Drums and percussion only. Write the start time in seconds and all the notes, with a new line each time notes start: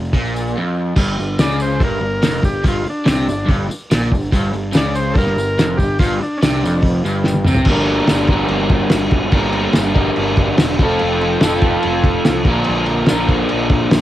0.05 tambourine
0.13 kick, open hi-hat, tambourine
0.25 tambourine
0.36 tambourine
0.47 tambourine
0.96 kick, crash, tambourine
1.19 tambourine
1.39 snare, open hi-hat, tambourine
1.60 tambourine
1.80 kick, open hi-hat, tambourine
2.22 snare, open hi-hat, tambourine
2.43 kick, tambourine
2.64 kick, open hi-hat, tambourine
2.87 tambourine
3.06 snare, open hi-hat, tambourine
3.29 tambourine
3.49 kick, open hi-hat, tambourine
3.71 tambourine
3.91 snare, open hi-hat, tambourine
4.12 kick, tambourine
4.32 kick, open hi-hat, tambourine
4.53 tambourine
4.73 snare, open hi-hat, tambourine
4.95 tambourine
5.15 kick, open hi-hat, tambourine
5.27 snare
5.38 tambourine
5.59 snare, open hi-hat, tambourine
5.79 kick, tambourine
5.99 kick, open hi-hat, tambourine
6.23 tambourine
6.42 snare, open hi-hat, tambourine
6.66 tambourine
6.82 kick, open hi-hat, tambourine
7.06 tambourine
7.24 snare, tambourine
7.34 high tom
7.45 mid tom, tambourine
7.55 floor tom
7.65 kick, crash
7.86 crash
8.07 snare, tambourine, crash
8.27 kick, crash
8.48 crash
8.70 kick, crash
8.90 snare, tambourine, crash
9.11 kick, crash
9.32 kick, crash
9.53 crash
9.73 snare, tambourine, crash
9.95 kick, crash
10.16 crash
10.37 kick, crash
10.58 snare, tambourine, crash
10.79 kick, crash
10.99 crash
11.21 crash
11.40 snare, tambourine, crash
11.61 kick, crash
11.82 crash
12.04 kick, crash
12.25 snare, tambourine, crash
12.45 kick, crash
12.64 crash
12.86 crash
13.06 snare, tambourine, crash
13.28 kick, crash
13.49 crash
13.69 kick, crash
13.91 snare, tambourine, crash